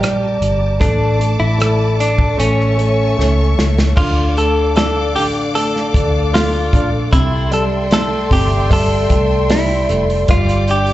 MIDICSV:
0, 0, Header, 1, 6, 480
1, 0, Start_track
1, 0, Key_signature, -1, "minor"
1, 0, Tempo, 789474
1, 489, Time_signature, 4, 2, 24, 8
1, 6647, End_track
2, 0, Start_track
2, 0, Title_t, "String section"
2, 0, Program_c, 0, 48
2, 0, Note_on_c, 0, 67, 71
2, 0, Note_on_c, 0, 70, 63
2, 0, Note_on_c, 0, 81, 59
2, 0, Note_on_c, 0, 86, 69
2, 455, Note_off_c, 0, 81, 0
2, 462, Note_off_c, 0, 86, 0
2, 469, Note_off_c, 0, 67, 0
2, 469, Note_off_c, 0, 70, 0
2, 484, Note_on_c, 0, 74, 61
2, 484, Note_on_c, 0, 86, 76
2, 485, Note_on_c, 0, 81, 68
2, 486, Note_on_c, 0, 69, 69
2, 1437, Note_off_c, 0, 74, 0
2, 1437, Note_off_c, 0, 81, 0
2, 1437, Note_off_c, 0, 86, 0
2, 1442, Note_on_c, 0, 73, 70
2, 1442, Note_on_c, 0, 76, 63
2, 1442, Note_on_c, 0, 85, 81
2, 2389, Note_off_c, 0, 69, 0
2, 2396, Note_off_c, 0, 73, 0
2, 2396, Note_off_c, 0, 76, 0
2, 2396, Note_off_c, 0, 85, 0
2, 2407, Note_on_c, 0, 74, 68
2, 2407, Note_on_c, 0, 86, 84
2, 2408, Note_on_c, 0, 77, 67
2, 2409, Note_on_c, 0, 69, 74
2, 4309, Note_off_c, 0, 74, 0
2, 4309, Note_off_c, 0, 77, 0
2, 4309, Note_off_c, 0, 86, 0
2, 4327, Note_on_c, 0, 76, 69
2, 4328, Note_on_c, 0, 84, 85
2, 4329, Note_on_c, 0, 79, 71
2, 6225, Note_off_c, 0, 69, 0
2, 6229, Note_off_c, 0, 76, 0
2, 6230, Note_off_c, 0, 79, 0
2, 6230, Note_off_c, 0, 84, 0
2, 6248, Note_on_c, 0, 79, 72
2, 6250, Note_on_c, 0, 74, 71
2, 6251, Note_on_c, 0, 86, 88
2, 6253, Note_on_c, 0, 67, 77
2, 6647, Note_off_c, 0, 67, 0
2, 6647, Note_off_c, 0, 74, 0
2, 6647, Note_off_c, 0, 79, 0
2, 6647, Note_off_c, 0, 86, 0
2, 6647, End_track
3, 0, Start_track
3, 0, Title_t, "Clean electric guitar"
3, 0, Program_c, 1, 27
3, 0, Note_on_c, 1, 67, 76
3, 230, Note_off_c, 1, 67, 0
3, 493, Note_on_c, 1, 62, 83
3, 827, Note_off_c, 1, 62, 0
3, 849, Note_on_c, 1, 64, 95
3, 1185, Note_off_c, 1, 64, 0
3, 1219, Note_on_c, 1, 62, 83
3, 1438, Note_off_c, 1, 62, 0
3, 1457, Note_on_c, 1, 61, 70
3, 2149, Note_off_c, 1, 61, 0
3, 2416, Note_on_c, 1, 65, 80
3, 2636, Note_off_c, 1, 65, 0
3, 2663, Note_on_c, 1, 69, 72
3, 2891, Note_off_c, 1, 69, 0
3, 2898, Note_on_c, 1, 69, 84
3, 3133, Note_off_c, 1, 69, 0
3, 3135, Note_on_c, 1, 67, 80
3, 3199, Note_off_c, 1, 67, 0
3, 3376, Note_on_c, 1, 69, 79
3, 3828, Note_off_c, 1, 69, 0
3, 3856, Note_on_c, 1, 65, 79
3, 4188, Note_off_c, 1, 65, 0
3, 4333, Note_on_c, 1, 64, 79
3, 4578, Note_off_c, 1, 64, 0
3, 4582, Note_on_c, 1, 69, 78
3, 4645, Note_off_c, 1, 69, 0
3, 4824, Note_on_c, 1, 69, 79
3, 5060, Note_off_c, 1, 69, 0
3, 5063, Note_on_c, 1, 67, 82
3, 5303, Note_off_c, 1, 67, 0
3, 5307, Note_on_c, 1, 69, 86
3, 5786, Note_on_c, 1, 64, 75
3, 5792, Note_off_c, 1, 69, 0
3, 6113, Note_off_c, 1, 64, 0
3, 6266, Note_on_c, 1, 65, 79
3, 6505, Note_off_c, 1, 65, 0
3, 6510, Note_on_c, 1, 67, 79
3, 6647, Note_off_c, 1, 67, 0
3, 6647, End_track
4, 0, Start_track
4, 0, Title_t, "Upright piano"
4, 0, Program_c, 2, 0
4, 0, Control_c, 2, 64, 127
4, 0, Note_on_c, 2, 55, 51
4, 470, Note_off_c, 2, 55, 0
4, 487, Note_on_c, 2, 57, 67
4, 498, Control_c, 2, 64, 0
4, 591, Control_c, 2, 64, 127
4, 717, Note_off_c, 2, 57, 0
4, 726, Note_on_c, 2, 57, 48
4, 954, Note_off_c, 2, 57, 0
4, 963, Note_on_c, 2, 57, 56
4, 1432, Note_off_c, 2, 57, 0
4, 1444, Note_on_c, 2, 57, 63
4, 1456, Control_c, 2, 64, 0
4, 1562, Control_c, 2, 64, 127
4, 1678, Note_off_c, 2, 57, 0
4, 1687, Note_on_c, 2, 57, 49
4, 1920, Note_off_c, 2, 57, 0
4, 1929, Note_on_c, 2, 57, 52
4, 2395, Note_off_c, 2, 57, 0
4, 2413, Note_on_c, 2, 50, 68
4, 2418, Control_c, 2, 64, 0
4, 2522, Control_c, 2, 64, 127
4, 2660, Note_on_c, 2, 57, 48
4, 2892, Note_on_c, 2, 62, 57
4, 3128, Note_off_c, 2, 50, 0
4, 3137, Note_on_c, 2, 50, 59
4, 3364, Note_off_c, 2, 57, 0
4, 3373, Note_on_c, 2, 57, 56
4, 3601, Note_off_c, 2, 62, 0
4, 3610, Note_on_c, 2, 62, 50
4, 3840, Note_off_c, 2, 57, 0
4, 3849, Note_on_c, 2, 57, 51
4, 4069, Note_off_c, 2, 50, 0
4, 4086, Note_off_c, 2, 62, 0
4, 4095, Note_on_c, 2, 62, 54
4, 4315, Note_off_c, 2, 57, 0
4, 4325, Note_off_c, 2, 62, 0
4, 4329, Note_on_c, 2, 48, 71
4, 4336, Control_c, 2, 64, 0
4, 4437, Control_c, 2, 64, 127
4, 4568, Note_on_c, 2, 55, 51
4, 4814, Note_on_c, 2, 57, 59
4, 5041, Note_off_c, 2, 48, 0
4, 5050, Note_on_c, 2, 48, 59
4, 5279, Note_off_c, 2, 55, 0
4, 5289, Note_on_c, 2, 55, 62
4, 5519, Note_off_c, 2, 57, 0
4, 5528, Note_on_c, 2, 57, 52
4, 5765, Note_off_c, 2, 55, 0
4, 5774, Note_on_c, 2, 55, 55
4, 5986, Note_off_c, 2, 48, 0
4, 6006, Note_off_c, 2, 57, 0
4, 6015, Note_on_c, 2, 57, 55
4, 6238, Note_off_c, 2, 55, 0
4, 6245, Note_off_c, 2, 57, 0
4, 6256, Note_on_c, 2, 55, 72
4, 6259, Control_c, 2, 64, 0
4, 6367, Control_c, 2, 64, 127
4, 6497, Note_on_c, 2, 62, 54
4, 6647, Note_off_c, 2, 55, 0
4, 6647, Note_off_c, 2, 62, 0
4, 6647, End_track
5, 0, Start_track
5, 0, Title_t, "Fingered electric bass"
5, 0, Program_c, 3, 33
5, 13, Note_on_c, 3, 34, 80
5, 234, Note_off_c, 3, 34, 0
5, 253, Note_on_c, 3, 31, 81
5, 475, Note_off_c, 3, 31, 0
5, 494, Note_on_c, 3, 33, 87
5, 827, Note_off_c, 3, 33, 0
5, 854, Note_on_c, 3, 33, 87
5, 1427, Note_off_c, 3, 33, 0
5, 1457, Note_on_c, 3, 33, 97
5, 1909, Note_off_c, 3, 33, 0
5, 1938, Note_on_c, 3, 37, 94
5, 2157, Note_off_c, 3, 37, 0
5, 2178, Note_on_c, 3, 37, 80
5, 2397, Note_off_c, 3, 37, 0
5, 2415, Note_on_c, 3, 38, 98
5, 3138, Note_off_c, 3, 38, 0
5, 3138, Note_on_c, 3, 33, 85
5, 3590, Note_off_c, 3, 33, 0
5, 3615, Note_on_c, 3, 38, 92
5, 4068, Note_off_c, 3, 38, 0
5, 4095, Note_on_c, 3, 34, 81
5, 4335, Note_off_c, 3, 34, 0
5, 4335, Note_on_c, 3, 36, 99
5, 5028, Note_off_c, 3, 36, 0
5, 5054, Note_on_c, 3, 31, 90
5, 5507, Note_off_c, 3, 31, 0
5, 5538, Note_on_c, 3, 36, 96
5, 5989, Note_off_c, 3, 36, 0
5, 6018, Note_on_c, 3, 29, 90
5, 6237, Note_off_c, 3, 29, 0
5, 6257, Note_on_c, 3, 31, 92
5, 6647, Note_off_c, 3, 31, 0
5, 6647, End_track
6, 0, Start_track
6, 0, Title_t, "Drums"
6, 19, Note_on_c, 9, 42, 70
6, 24, Note_on_c, 9, 37, 96
6, 79, Note_off_c, 9, 42, 0
6, 85, Note_off_c, 9, 37, 0
6, 256, Note_on_c, 9, 42, 64
6, 317, Note_off_c, 9, 42, 0
6, 491, Note_on_c, 9, 36, 94
6, 496, Note_on_c, 9, 42, 82
6, 552, Note_off_c, 9, 36, 0
6, 557, Note_off_c, 9, 42, 0
6, 736, Note_on_c, 9, 42, 62
6, 797, Note_off_c, 9, 42, 0
6, 974, Note_on_c, 9, 42, 68
6, 983, Note_on_c, 9, 37, 93
6, 1035, Note_off_c, 9, 42, 0
6, 1044, Note_off_c, 9, 37, 0
6, 1218, Note_on_c, 9, 42, 74
6, 1278, Note_off_c, 9, 42, 0
6, 1328, Note_on_c, 9, 36, 74
6, 1389, Note_off_c, 9, 36, 0
6, 1457, Note_on_c, 9, 42, 81
6, 1518, Note_off_c, 9, 42, 0
6, 1585, Note_on_c, 9, 37, 29
6, 1646, Note_off_c, 9, 37, 0
6, 1696, Note_on_c, 9, 42, 55
6, 1757, Note_off_c, 9, 42, 0
6, 1945, Note_on_c, 9, 38, 48
6, 2006, Note_off_c, 9, 38, 0
6, 2181, Note_on_c, 9, 38, 75
6, 2242, Note_off_c, 9, 38, 0
6, 2301, Note_on_c, 9, 38, 84
6, 2362, Note_off_c, 9, 38, 0
6, 2414, Note_on_c, 9, 36, 107
6, 2418, Note_on_c, 9, 49, 90
6, 2475, Note_off_c, 9, 36, 0
6, 2479, Note_off_c, 9, 49, 0
6, 2658, Note_on_c, 9, 46, 66
6, 2659, Note_on_c, 9, 44, 59
6, 2719, Note_off_c, 9, 46, 0
6, 2720, Note_off_c, 9, 44, 0
6, 2894, Note_on_c, 9, 44, 56
6, 2894, Note_on_c, 9, 46, 75
6, 2903, Note_on_c, 9, 38, 99
6, 2955, Note_off_c, 9, 44, 0
6, 2955, Note_off_c, 9, 46, 0
6, 2964, Note_off_c, 9, 38, 0
6, 3135, Note_on_c, 9, 44, 60
6, 3137, Note_on_c, 9, 46, 78
6, 3196, Note_off_c, 9, 44, 0
6, 3198, Note_off_c, 9, 46, 0
6, 3374, Note_on_c, 9, 44, 65
6, 3377, Note_on_c, 9, 46, 92
6, 3434, Note_off_c, 9, 44, 0
6, 3438, Note_off_c, 9, 46, 0
6, 3502, Note_on_c, 9, 38, 32
6, 3563, Note_off_c, 9, 38, 0
6, 3614, Note_on_c, 9, 36, 84
6, 3617, Note_on_c, 9, 44, 59
6, 3617, Note_on_c, 9, 46, 60
6, 3675, Note_off_c, 9, 36, 0
6, 3677, Note_off_c, 9, 46, 0
6, 3678, Note_off_c, 9, 44, 0
6, 3857, Note_on_c, 9, 44, 58
6, 3858, Note_on_c, 9, 46, 76
6, 3863, Note_on_c, 9, 38, 102
6, 3918, Note_off_c, 9, 44, 0
6, 3919, Note_off_c, 9, 46, 0
6, 3924, Note_off_c, 9, 38, 0
6, 4093, Note_on_c, 9, 36, 90
6, 4097, Note_on_c, 9, 46, 68
6, 4098, Note_on_c, 9, 44, 58
6, 4154, Note_off_c, 9, 36, 0
6, 4158, Note_off_c, 9, 46, 0
6, 4159, Note_off_c, 9, 44, 0
6, 4333, Note_on_c, 9, 36, 100
6, 4335, Note_on_c, 9, 44, 62
6, 4335, Note_on_c, 9, 46, 90
6, 4394, Note_off_c, 9, 36, 0
6, 4396, Note_off_c, 9, 44, 0
6, 4396, Note_off_c, 9, 46, 0
6, 4570, Note_on_c, 9, 46, 68
6, 4571, Note_on_c, 9, 44, 59
6, 4631, Note_off_c, 9, 46, 0
6, 4632, Note_off_c, 9, 44, 0
6, 4809, Note_on_c, 9, 46, 77
6, 4810, Note_on_c, 9, 44, 60
6, 4818, Note_on_c, 9, 38, 107
6, 4870, Note_off_c, 9, 44, 0
6, 4870, Note_off_c, 9, 46, 0
6, 4879, Note_off_c, 9, 38, 0
6, 5053, Note_on_c, 9, 36, 86
6, 5057, Note_on_c, 9, 44, 64
6, 5060, Note_on_c, 9, 46, 81
6, 5113, Note_off_c, 9, 36, 0
6, 5118, Note_off_c, 9, 44, 0
6, 5121, Note_off_c, 9, 46, 0
6, 5295, Note_on_c, 9, 36, 86
6, 5295, Note_on_c, 9, 44, 65
6, 5298, Note_on_c, 9, 46, 92
6, 5355, Note_off_c, 9, 44, 0
6, 5356, Note_off_c, 9, 36, 0
6, 5359, Note_off_c, 9, 46, 0
6, 5530, Note_on_c, 9, 46, 60
6, 5531, Note_on_c, 9, 44, 56
6, 5533, Note_on_c, 9, 36, 83
6, 5591, Note_off_c, 9, 46, 0
6, 5592, Note_off_c, 9, 44, 0
6, 5594, Note_off_c, 9, 36, 0
6, 5773, Note_on_c, 9, 44, 64
6, 5774, Note_on_c, 9, 46, 82
6, 5779, Note_on_c, 9, 38, 100
6, 5833, Note_off_c, 9, 44, 0
6, 5835, Note_off_c, 9, 46, 0
6, 5840, Note_off_c, 9, 38, 0
6, 6014, Note_on_c, 9, 46, 74
6, 6015, Note_on_c, 9, 44, 62
6, 6075, Note_off_c, 9, 46, 0
6, 6076, Note_off_c, 9, 44, 0
6, 6140, Note_on_c, 9, 46, 54
6, 6201, Note_off_c, 9, 46, 0
6, 6252, Note_on_c, 9, 44, 61
6, 6252, Note_on_c, 9, 46, 93
6, 6255, Note_on_c, 9, 36, 102
6, 6312, Note_off_c, 9, 46, 0
6, 6313, Note_off_c, 9, 44, 0
6, 6315, Note_off_c, 9, 36, 0
6, 6376, Note_on_c, 9, 44, 62
6, 6437, Note_off_c, 9, 44, 0
6, 6492, Note_on_c, 9, 44, 57
6, 6492, Note_on_c, 9, 46, 67
6, 6552, Note_off_c, 9, 46, 0
6, 6553, Note_off_c, 9, 44, 0
6, 6608, Note_on_c, 9, 46, 48
6, 6647, Note_off_c, 9, 46, 0
6, 6647, End_track
0, 0, End_of_file